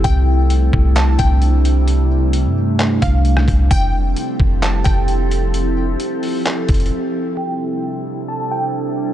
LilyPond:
<<
  \new Staff \with { instrumentName = "Synth pluck" } { \time 4/4 \key c \major \tempo 4 = 131 g''2 a''8 g''8 r4 | r2 r8 f''8 r4 | g''2 a''8 g''8 r4 | r1 |
g''2 a''8 g''8 r4 | }
  \new Staff \with { instrumentName = "Ambient pad" } { \time 4/4 \key c \major <c g a d' e'>1~ | <c g a d' e'>1 | <f c' e' g' a'>1~ | <f c' e' g' a'>1 |
<c g d' e' a'>1 | }
  \new Staff \with { instrumentName = "808-style bass" } { \clef bass \time 4/4 \key c \major c,4. c,4 c,4.~ | c,4~ c,16 g,4~ g,16 c,4 c,8 | f,,4 r8 f,,4 f,,4.~ | f,,4 r4. f,,8 r4 |
r1 | }
  \new DrumStaff \with { instrumentName = "Drums" } \drummode { \time 4/4 <hh bd>4 hh8 bd8 <hc hh>8 <hh bd>8 hh8 hh8 | hh4 hh4 <hc hh>8 <hh bd>8 hh16 ss16 <hh bd>8 | <hh bd>4 hh8 bd8 <hc hh>8 <hh bd>8 hh8 hh8 | hh4 hh8 hho8 <hc hh>8 <hh bd>32 hh32 hh32 hh32 r4 |
r4 r4 r4 r4 | }
>>